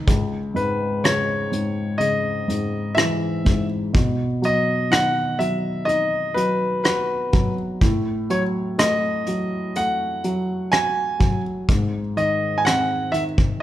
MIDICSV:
0, 0, Header, 1, 4, 480
1, 0, Start_track
1, 0, Key_signature, 4, "minor"
1, 0, Tempo, 967742
1, 38, Time_signature, 4, 2, 24, 8
1, 6758, End_track
2, 0, Start_track
2, 0, Title_t, "Grand piano"
2, 0, Program_c, 0, 0
2, 278, Note_on_c, 0, 71, 58
2, 516, Note_on_c, 0, 73, 74
2, 525, Note_off_c, 0, 71, 0
2, 981, Note_on_c, 0, 75, 73
2, 1012, Note_off_c, 0, 73, 0
2, 1462, Note_on_c, 0, 76, 76
2, 1484, Note_off_c, 0, 75, 0
2, 1810, Note_off_c, 0, 76, 0
2, 2207, Note_on_c, 0, 75, 75
2, 2439, Note_on_c, 0, 78, 91
2, 2450, Note_off_c, 0, 75, 0
2, 2661, Note_off_c, 0, 78, 0
2, 2673, Note_on_c, 0, 76, 69
2, 2903, Note_on_c, 0, 75, 75
2, 2923, Note_off_c, 0, 76, 0
2, 3146, Note_on_c, 0, 71, 65
2, 3158, Note_off_c, 0, 75, 0
2, 3384, Note_off_c, 0, 71, 0
2, 3391, Note_on_c, 0, 71, 61
2, 3735, Note_off_c, 0, 71, 0
2, 4119, Note_on_c, 0, 73, 58
2, 4173, Note_off_c, 0, 73, 0
2, 4359, Note_on_c, 0, 75, 77
2, 4843, Note_on_c, 0, 78, 75
2, 4853, Note_off_c, 0, 75, 0
2, 5301, Note_off_c, 0, 78, 0
2, 5315, Note_on_c, 0, 80, 78
2, 5657, Note_off_c, 0, 80, 0
2, 6037, Note_on_c, 0, 75, 76
2, 6238, Note_on_c, 0, 80, 71
2, 6249, Note_off_c, 0, 75, 0
2, 6274, Note_on_c, 0, 78, 89
2, 6275, Note_off_c, 0, 80, 0
2, 6507, Note_on_c, 0, 76, 78
2, 6523, Note_off_c, 0, 78, 0
2, 6562, Note_off_c, 0, 76, 0
2, 6758, End_track
3, 0, Start_track
3, 0, Title_t, "Upright piano"
3, 0, Program_c, 1, 0
3, 0, Control_c, 1, 64, 127
3, 34, Note_on_c, 1, 37, 57
3, 44, Control_c, 1, 64, 0
3, 144, Control_c, 1, 64, 127
3, 270, Note_on_c, 1, 44, 50
3, 515, Note_on_c, 1, 49, 46
3, 745, Note_off_c, 1, 44, 0
3, 753, Note_on_c, 1, 44, 43
3, 982, Note_off_c, 1, 49, 0
3, 989, Note_on_c, 1, 49, 46
3, 1223, Note_off_c, 1, 44, 0
3, 1231, Note_on_c, 1, 44, 48
3, 1472, Note_on_c, 1, 52, 53
3, 1703, Note_off_c, 1, 44, 0
3, 1710, Note_on_c, 1, 44, 44
3, 1934, Note_off_c, 1, 49, 0
3, 1936, Note_off_c, 1, 37, 0
3, 1941, Note_off_c, 1, 52, 0
3, 1947, Note_off_c, 1, 44, 0
3, 1951, Note_on_c, 1, 47, 55
3, 1964, Control_c, 1, 64, 0
3, 2053, Control_c, 1, 64, 127
3, 2192, Note_on_c, 1, 54, 50
3, 2433, Note_on_c, 1, 51, 49
3, 2667, Note_off_c, 1, 54, 0
3, 2675, Note_on_c, 1, 54, 45
3, 2913, Note_on_c, 1, 63, 47
3, 3148, Note_off_c, 1, 54, 0
3, 3156, Note_on_c, 1, 54, 45
3, 3376, Note_off_c, 1, 51, 0
3, 3397, Note_on_c, 1, 66, 56
3, 3627, Note_off_c, 1, 54, 0
3, 3634, Note_on_c, 1, 54, 50
3, 3854, Note_off_c, 1, 47, 0
3, 3856, Note_off_c, 1, 63, 0
3, 3863, Note_off_c, 1, 66, 0
3, 3869, Note_off_c, 1, 54, 0
3, 3879, Note_on_c, 1, 45, 64
3, 3885, Control_c, 1, 64, 0
3, 3972, Control_c, 1, 64, 127
3, 4116, Note_on_c, 1, 54, 52
3, 4356, Note_on_c, 1, 57, 49
3, 4594, Note_off_c, 1, 54, 0
3, 4602, Note_on_c, 1, 54, 44
3, 4834, Note_off_c, 1, 57, 0
3, 4841, Note_on_c, 1, 57, 49
3, 5073, Note_off_c, 1, 54, 0
3, 5081, Note_on_c, 1, 54, 51
3, 5317, Note_on_c, 1, 66, 46
3, 5545, Note_off_c, 1, 54, 0
3, 5553, Note_on_c, 1, 54, 50
3, 5779, Note_off_c, 1, 45, 0
3, 5780, Note_off_c, 1, 57, 0
3, 5783, Note_off_c, 1, 66, 0
3, 5788, Note_off_c, 1, 54, 0
3, 5797, Note_on_c, 1, 44, 59
3, 5803, Control_c, 1, 64, 0
3, 5877, Control_c, 1, 64, 127
3, 6034, Note_on_c, 1, 51, 50
3, 6274, Note_on_c, 1, 60, 53
3, 6507, Note_off_c, 1, 51, 0
3, 6514, Note_on_c, 1, 51, 45
3, 6752, Note_off_c, 1, 60, 0
3, 6758, Note_off_c, 1, 44, 0
3, 6758, Note_off_c, 1, 51, 0
3, 6758, End_track
4, 0, Start_track
4, 0, Title_t, "Drums"
4, 38, Note_on_c, 9, 36, 93
4, 38, Note_on_c, 9, 42, 76
4, 87, Note_off_c, 9, 36, 0
4, 88, Note_off_c, 9, 42, 0
4, 279, Note_on_c, 9, 42, 60
4, 329, Note_off_c, 9, 42, 0
4, 519, Note_on_c, 9, 42, 91
4, 522, Note_on_c, 9, 37, 81
4, 568, Note_off_c, 9, 42, 0
4, 572, Note_off_c, 9, 37, 0
4, 758, Note_on_c, 9, 42, 69
4, 807, Note_off_c, 9, 42, 0
4, 995, Note_on_c, 9, 42, 70
4, 1044, Note_off_c, 9, 42, 0
4, 1239, Note_on_c, 9, 42, 67
4, 1288, Note_off_c, 9, 42, 0
4, 1474, Note_on_c, 9, 42, 62
4, 1479, Note_on_c, 9, 37, 95
4, 1524, Note_off_c, 9, 42, 0
4, 1528, Note_off_c, 9, 37, 0
4, 1716, Note_on_c, 9, 42, 60
4, 1718, Note_on_c, 9, 36, 73
4, 1765, Note_off_c, 9, 42, 0
4, 1768, Note_off_c, 9, 36, 0
4, 1957, Note_on_c, 9, 36, 97
4, 1957, Note_on_c, 9, 42, 73
4, 2006, Note_off_c, 9, 42, 0
4, 2007, Note_off_c, 9, 36, 0
4, 2199, Note_on_c, 9, 42, 61
4, 2249, Note_off_c, 9, 42, 0
4, 2441, Note_on_c, 9, 42, 91
4, 2444, Note_on_c, 9, 37, 79
4, 2491, Note_off_c, 9, 42, 0
4, 2494, Note_off_c, 9, 37, 0
4, 2679, Note_on_c, 9, 42, 65
4, 2729, Note_off_c, 9, 42, 0
4, 2920, Note_on_c, 9, 42, 68
4, 2970, Note_off_c, 9, 42, 0
4, 3161, Note_on_c, 9, 42, 67
4, 3210, Note_off_c, 9, 42, 0
4, 3395, Note_on_c, 9, 42, 64
4, 3399, Note_on_c, 9, 37, 84
4, 3444, Note_off_c, 9, 42, 0
4, 3449, Note_off_c, 9, 37, 0
4, 3635, Note_on_c, 9, 42, 54
4, 3638, Note_on_c, 9, 36, 79
4, 3684, Note_off_c, 9, 42, 0
4, 3687, Note_off_c, 9, 36, 0
4, 3876, Note_on_c, 9, 36, 90
4, 3876, Note_on_c, 9, 42, 77
4, 3925, Note_off_c, 9, 36, 0
4, 3925, Note_off_c, 9, 42, 0
4, 4117, Note_on_c, 9, 42, 58
4, 4167, Note_off_c, 9, 42, 0
4, 4358, Note_on_c, 9, 42, 101
4, 4362, Note_on_c, 9, 37, 87
4, 4408, Note_off_c, 9, 42, 0
4, 4411, Note_off_c, 9, 37, 0
4, 4596, Note_on_c, 9, 42, 71
4, 4646, Note_off_c, 9, 42, 0
4, 4838, Note_on_c, 9, 42, 74
4, 4888, Note_off_c, 9, 42, 0
4, 5079, Note_on_c, 9, 42, 68
4, 5129, Note_off_c, 9, 42, 0
4, 5317, Note_on_c, 9, 42, 65
4, 5321, Note_on_c, 9, 37, 79
4, 5367, Note_off_c, 9, 42, 0
4, 5371, Note_off_c, 9, 37, 0
4, 5556, Note_on_c, 9, 42, 52
4, 5558, Note_on_c, 9, 36, 80
4, 5606, Note_off_c, 9, 42, 0
4, 5607, Note_off_c, 9, 36, 0
4, 5797, Note_on_c, 9, 36, 91
4, 5800, Note_on_c, 9, 42, 79
4, 5847, Note_off_c, 9, 36, 0
4, 5849, Note_off_c, 9, 42, 0
4, 6038, Note_on_c, 9, 42, 55
4, 6088, Note_off_c, 9, 42, 0
4, 6280, Note_on_c, 9, 42, 96
4, 6283, Note_on_c, 9, 37, 78
4, 6329, Note_off_c, 9, 42, 0
4, 6333, Note_off_c, 9, 37, 0
4, 6516, Note_on_c, 9, 42, 63
4, 6566, Note_off_c, 9, 42, 0
4, 6637, Note_on_c, 9, 36, 76
4, 6644, Note_on_c, 9, 37, 24
4, 6686, Note_off_c, 9, 36, 0
4, 6693, Note_off_c, 9, 37, 0
4, 6758, End_track
0, 0, End_of_file